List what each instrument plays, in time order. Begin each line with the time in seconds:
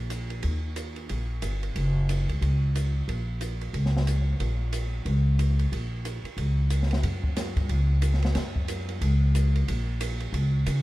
Already playing: upright bass A#1
0.10 hi-hat pedal, ride
0.30 ride
0.43 upright bass D#2, ride
0.76 hi-hat pedal, ride
0.96 ride
1.09 upright bass A#1, ride
1.42 upright bass G1, hi-hat pedal, ride
1.63 ride
1.75 upright bass F#1, ride
2.09 hi-hat pedal, ride
2.29 upright bass C#2, ride
2.41 upright bass C#2, ride
2.75 hi-hat pedal, ride
3.08 upright bass A#1, ride
3.41 hi-hat pedal, ride
3.61 ride
3.73 upright bass C#2, ride
3.86 snare
3.97 snare
4.07 hi-hat pedal, ride
4.40 upright bass A#1, ride
4.73 hi-hat pedal, ride
5.05 upright bass C#2, ride
5.39 hi-hat pedal, ride
5.59 ride
5.72 upright bass A#1, ride
6.05 hi-hat pedal, ride
6.24 muted upright bass stroke, ride
6.37 upright bass C#2, ride
6.70 hi-hat pedal, ride
6.83 snare
6.91 snare, ride
7.03 upright bass F#2, ride
7.24 kick
7.36 snare, hi-hat pedal, ride
7.56 upright bass G2, kick, ride
7.69 upright bass C#2, ride
8.02 hi-hat pedal, ride
8.14 snare
8.22 snare, ride
8.35 upright bass F#2, snare, ride
8.56 kick
8.68 hi-hat pedal, ride
8.89 ride
9.01 upright bass C#2, ride
9.35 hi-hat pedal, ride
9.55 ride
9.68 upright bass A#1, ride
10.01 hi-hat pedal, ride
10.20 ride
10.33 upright bass C#2, ride
10.66 upright bass C#3, hi-hat pedal, ride